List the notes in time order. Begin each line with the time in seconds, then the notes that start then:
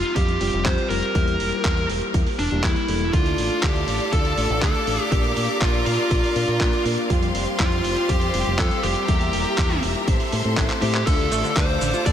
Already playing: G3 C4 F4 G4
0.04 closed hi-hat
0.16 F2 G4, kick, closed hi-hat
0.28 closed hi-hat
0.41 F1 G3 C4 F4 G4, open hi-hat
0.53 F1, closed hi-hat
0.65 F2 C5, kick, clap, closed hi-hat
0.78 closed hi-hat
0.90 F1 G3 C4 F4 G4 A#4, open hi-hat
1.03 closed hi-hat
1.15 E2 G3 A#3 E4 G4, kick, closed hi-hat
1.28 closed hi-hat
1.40 E1, open hi-hat
1.52 closed hi-hat
1.65 E2, kick, clap, closed hi-hat
1.77 closed hi-hat
1.89 E1, open hi-hat
2.02 closed hi-hat
2.14 E2, kick, closed hi-hat
2.27 open hi-hat
2.39 E1 D4, open hi-hat
2.51 E1 G3 A#3 E4 G4, closed hi-hat
2.64 E2 E4, kick, clap, closed hi-hat
2.76 closed hi-hat
2.88 E1 G3 A#3 E4 A4, open hi-hat
3.01 closed hi-hat
3.13 D2 A3 D4 F4 A4 D5 F5 D6, kick, closed hi-hat
3.26 closed hi-hat
3.38 A1, open hi-hat
3.51 closed hi-hat
3.63 D2 G4, kick, clap, closed hi-hat
3.76 closed hi-hat
3.88 A1, open hi-hat
4.00 closed hi-hat
4.13 D2 A4, kick, closed hi-hat
4.25 closed hi-hat
4.37 A1 A3 D4 F4 A4, open hi-hat
4.50 A1, closed hi-hat
4.62 D2 A4, kick, clap, closed hi-hat
4.75 closed hi-hat
4.87 A1 A3 D4 F4 A4, open hi-hat
5.00 closed hi-hat
5.12 A#1 A#3 D4 F4 G4 A#4 D5, kick, closed hi-hat
5.24 closed hi-hat
5.37 A#2, open hi-hat
5.49 closed hi-hat
5.61 A#1 F4, kick, clap, closed hi-hat
5.74 closed hi-hat
5.86 A#2 F4, open hi-hat
5.99 closed hi-hat
6.11 A#1, kick, closed hi-hat
6.23 open hi-hat
6.36 A#2 A#3 D4 F4 A#4, open hi-hat
6.48 A#2
6.60 A#1, kick, clap, closed hi-hat
6.73 closed hi-hat
6.85 A#2 A#3 D4 F4 A#4, open hi-hat
6.98 closed hi-hat
7.10 F2 G3 C4 F4 G4 C5 C6, kick, closed hi-hat
7.23 closed hi-hat
7.35 F1, open hi-hat
7.47 closed hi-hat
7.60 F2 F4, kick, clap, closed hi-hat
7.72 closed hi-hat
7.84 F1, open hi-hat
7.97 closed hi-hat
8.09 F2 G4, kick, closed hi-hat
8.21 closed hi-hat
8.34 F1 G3 C4 F4 G4, open hi-hat
8.46 F1, closed hi-hat
8.59 F2 A4, kick, clap, closed hi-hat
8.71 closed hi-hat
8.83 F1 G3 C4 F4 G4, open hi-hat
8.96 closed hi-hat
9.08 E2 G3 A#3 E4 G4 A#4 E5 A#5, kick, closed hi-hat
9.21 closed hi-hat
9.33 E1, open hi-hat
9.46 closed hi-hat
9.58 E2, kick, clap, closed hi-hat
9.70 closed hi-hat
9.83 E1, open hi-hat
9.95 closed hi-hat
10.07 A1 A4 C5 C6, kick, closed hi-hat
10.20 open hi-hat
10.32 A2, open hi-hat
10.45 A2 A3 C4 E4 A4, closed hi-hat
10.57 A1, kick, clap, closed hi-hat
10.70 clap, closed hi-hat
10.82 A2 A3 C4 E4 G4 C5, open hi-hat
10.94 clap
11.07 D2 D3 A3 D4 F4 A4 D5 F5 D6, kick, closed hi-hat, crash, cabasa
11.19 closed hi-hat
11.32 A1 A3, open hi-hat, cabasa
11.44 D3, closed hi-hat, cabasa
11.56 D2 D4 C5, kick, clap, closed hi-hat, cabasa
11.69 closed hi-hat
11.81 A1 D3, open hi-hat, cabasa
11.94 F4, cabasa
12.06 D2 D3 D5, kick, closed hi-hat, cabasa